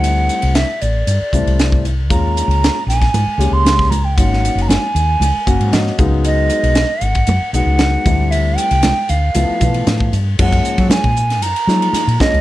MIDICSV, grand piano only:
0, 0, Header, 1, 2, 480
1, 0, Start_track
1, 0, Tempo, 517241
1, 35, Time_signature, 4, 2, 24, 8
1, 11516, End_track
2, 0, Start_track
2, 0, Title_t, "Grand piano"
2, 0, Program_c, 0, 0
2, 0, Note_on_c, 0, 55, 60
2, 0, Note_on_c, 0, 57, 57
2, 0, Note_on_c, 0, 60, 53
2, 0, Note_on_c, 0, 64, 70
2, 565, Note_off_c, 0, 55, 0
2, 566, Note_off_c, 0, 64, 0
2, 567, Note_off_c, 0, 57, 0
2, 568, Note_off_c, 0, 60, 0
2, 1232, Note_on_c, 0, 55, 57
2, 1238, Note_on_c, 0, 57, 57
2, 1238, Note_on_c, 0, 64, 69
2, 1239, Note_on_c, 0, 60, 50
2, 1687, Note_off_c, 0, 55, 0
2, 1691, Note_off_c, 0, 57, 0
2, 1691, Note_off_c, 0, 60, 0
2, 1691, Note_off_c, 0, 64, 0
2, 1946, Note_on_c, 0, 58, 54
2, 1949, Note_on_c, 0, 56, 56
2, 1952, Note_on_c, 0, 61, 53
2, 1954, Note_on_c, 0, 65, 68
2, 2559, Note_off_c, 0, 58, 0
2, 2560, Note_off_c, 0, 56, 0
2, 2562, Note_off_c, 0, 61, 0
2, 2563, Note_off_c, 0, 65, 0
2, 3144, Note_on_c, 0, 56, 57
2, 3147, Note_on_c, 0, 58, 55
2, 3150, Note_on_c, 0, 61, 57
2, 3152, Note_on_c, 0, 67, 67
2, 3603, Note_off_c, 0, 56, 0
2, 3604, Note_off_c, 0, 58, 0
2, 3606, Note_off_c, 0, 61, 0
2, 3606, Note_off_c, 0, 67, 0
2, 3876, Note_on_c, 0, 54, 56
2, 3877, Note_on_c, 0, 58, 55
2, 3881, Note_on_c, 0, 61, 54
2, 3882, Note_on_c, 0, 63, 58
2, 4484, Note_off_c, 0, 54, 0
2, 4484, Note_off_c, 0, 58, 0
2, 4486, Note_off_c, 0, 61, 0
2, 4487, Note_off_c, 0, 63, 0
2, 5070, Note_on_c, 0, 58, 60
2, 5071, Note_on_c, 0, 54, 78
2, 5076, Note_on_c, 0, 66, 82
2, 5080, Note_on_c, 0, 61, 65
2, 5080, Note_on_c, 0, 73, 59
2, 5299, Note_off_c, 0, 73, 0
2, 5316, Note_on_c, 0, 75, 61
2, 5526, Note_off_c, 0, 58, 0
2, 5527, Note_off_c, 0, 54, 0
2, 5529, Note_off_c, 0, 66, 0
2, 5531, Note_off_c, 0, 61, 0
2, 5537, Note_off_c, 0, 75, 0
2, 5553, Note_on_c, 0, 54, 76
2, 5555, Note_on_c, 0, 77, 55
2, 5556, Note_on_c, 0, 59, 71
2, 5557, Note_on_c, 0, 56, 70
2, 5562, Note_on_c, 0, 63, 86
2, 5776, Note_off_c, 0, 77, 0
2, 6322, Note_off_c, 0, 54, 0
2, 6324, Note_off_c, 0, 56, 0
2, 6324, Note_off_c, 0, 59, 0
2, 6327, Note_off_c, 0, 63, 0
2, 6996, Note_on_c, 0, 54, 56
2, 6996, Note_on_c, 0, 59, 51
2, 6997, Note_on_c, 0, 63, 67
2, 6998, Note_on_c, 0, 56, 54
2, 7450, Note_off_c, 0, 59, 0
2, 7451, Note_off_c, 0, 54, 0
2, 7451, Note_off_c, 0, 63, 0
2, 7452, Note_off_c, 0, 56, 0
2, 7471, Note_on_c, 0, 55, 64
2, 7472, Note_on_c, 0, 57, 53
2, 7473, Note_on_c, 0, 60, 51
2, 7481, Note_on_c, 0, 64, 65
2, 8243, Note_off_c, 0, 55, 0
2, 8243, Note_off_c, 0, 57, 0
2, 8244, Note_off_c, 0, 60, 0
2, 8248, Note_off_c, 0, 64, 0
2, 8678, Note_on_c, 0, 53, 64
2, 8678, Note_on_c, 0, 57, 55
2, 8681, Note_on_c, 0, 59, 61
2, 8683, Note_on_c, 0, 64, 64
2, 8870, Note_off_c, 0, 53, 0
2, 8870, Note_off_c, 0, 57, 0
2, 8872, Note_off_c, 0, 59, 0
2, 8873, Note_off_c, 0, 64, 0
2, 8910, Note_on_c, 0, 53, 59
2, 8914, Note_on_c, 0, 57, 52
2, 8915, Note_on_c, 0, 52, 71
2, 8918, Note_on_c, 0, 59, 53
2, 9369, Note_off_c, 0, 53, 0
2, 9371, Note_off_c, 0, 52, 0
2, 9371, Note_off_c, 0, 57, 0
2, 9373, Note_off_c, 0, 59, 0
2, 9639, Note_on_c, 0, 56, 59
2, 9640, Note_on_c, 0, 53, 63
2, 9640, Note_on_c, 0, 61, 67
2, 9644, Note_on_c, 0, 58, 56
2, 10248, Note_off_c, 0, 56, 0
2, 10249, Note_off_c, 0, 53, 0
2, 10249, Note_off_c, 0, 61, 0
2, 10251, Note_off_c, 0, 58, 0
2, 10840, Note_on_c, 0, 56, 56
2, 10844, Note_on_c, 0, 53, 64
2, 10847, Note_on_c, 0, 63, 68
2, 10848, Note_on_c, 0, 58, 55
2, 11144, Note_off_c, 0, 56, 0
2, 11146, Note_off_c, 0, 53, 0
2, 11147, Note_off_c, 0, 63, 0
2, 11148, Note_off_c, 0, 58, 0
2, 11320, Note_on_c, 0, 53, 59
2, 11322, Note_on_c, 0, 58, 52
2, 11325, Note_on_c, 0, 56, 52
2, 11327, Note_on_c, 0, 61, 67
2, 11473, Note_off_c, 0, 53, 0
2, 11474, Note_off_c, 0, 58, 0
2, 11476, Note_off_c, 0, 56, 0
2, 11477, Note_off_c, 0, 61, 0
2, 11516, End_track
0, 0, End_of_file